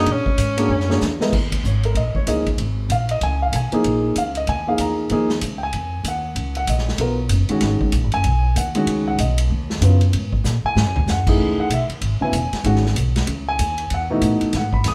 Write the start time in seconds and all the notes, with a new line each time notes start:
0.00 D#4
0.06 A#2, ride
0.12 C#4
0.26 muted upright bass stroke, kick
0.37 G#2, hi-hat pedal, ride
0.57 A#3 D4 F#4 G#4 C#5, ride
0.69 F#2
0.80 snare
0.89 A#3 D4 F#4 G#4 C#5, snare
1.01 E2, snare, hi-hat pedal
1.20 G#3 B3 E4 A#4 D#5, snare
1.32 D#2, kick, crash
1.52 kick, ride
1.63 G#1 C#5, hi-hat pedal
1.83 A#4, ride
1.95 A#1 D#5, ride
2.14 C#5, muted upright bass stroke, kick
2.27 C#2 F3 A#3 D#4 G#4 D#5, hi-hat pedal, ride
2.46 kick, ride
2.58 G#1, ride
2.89 A#1 F5, hi-hat pedal, ride
3.09 D#5, ride
3.21 C#2 G#5, ride
3.42 F5
3.52 B1 G#5, hi-hat pedal, ride
3.72 F3 A#3 D#4 G#4, muted upright bass stroke, ride
3.84 A#1, ride
4.16 C#2 F5, hi-hat pedal, ride
4.35 D#5, ride
4.47 D#2 G#5, ride
4.67 F3 A#3 D#4 G#4 F5
4.78 E2 A#5, hi-hat pedal, ride
5.09 D#2 F3 A#3 D#4 G#4, ride
5.29 snare
5.41 C#2, hi-hat pedal, ride
5.58 G5
5.63 G#5
5.73 F2, ride
6.04 D#2, hi-hat pedal, ride
6.08 F#5
6.35 C#2, ride
6.55 F#5, ride
6.67 A#1 D#5, hi-hat pedal, ride
6.78 snare
6.89 snare
6.98 B1 F#3 B3 F4 A#4, ride
7.29 F#1, hi-hat pedal, ride
7.49 D#3 G#3 C#4 F#4, muted upright bass stroke, ride
7.61 G#1, snare, ride
7.80 muted upright bass stroke, kick
7.92 A#1, hi-hat pedal, ride
8.04 G#1
8.12 F#1 G#5, ride
8.24 B1, ride
8.56 D#2 F#5, hi-hat pedal, ride
8.75 D#3 G#3 C#4 F#4, ride
8.86 C#2, ride
9.08 F#5
9.18 B1 D#5, hi-hat pedal, ride
9.38 ride
9.50 D#2
9.70 snare
9.81 F#2 C#3 F#3 B3 F4, hi-hat pedal, ride
10.01 ride
10.13 G#2, ride
10.32 kick
10.44 A#2, snare, hi-hat pedal
10.64 G#5, muted upright bass stroke
10.75 G#2, snare
10.86 F#2
10.96 C#2, floor tom
11.06 F#2 F#5, snare, hi-hat pedal
11.27 E3 A3 D#4 G#4, kick, crash
11.38 C#2
11.57 F#5, muted upright bass stroke
11.70 B1, hi-hat pedal, ride
11.74 E5
11.89 muted upright bass stroke, ride
12.01 G#1, ride
12.20 C#3 F#3 B3 E4 G#5, muted upright bass stroke
12.32 E1, hi-hat pedal, ride
12.52 muted upright bass stroke, snare, ride
12.64 G#1 D#3 G#3 C#4 F#4 F#5, ride
12.76 snare
12.86 snare
12.95 B1, hi-hat pedal, ride
13.16 snare, ride
13.27 C#2, ride
13.49 G#5
13.59 D#2, hi-hat pedal, ride
13.78 ride
13.90 E2, ride
13.94 F#5
14.10 B2 E3 A3 D#4
14.22 A2, hi-hat pedal, ride
14.41 muted upright bass stroke, ride
14.53 G#2 F#5, snare, ride
14.73 B5, kick
14.84 E2 D#6, snare, hi-hat pedal, ride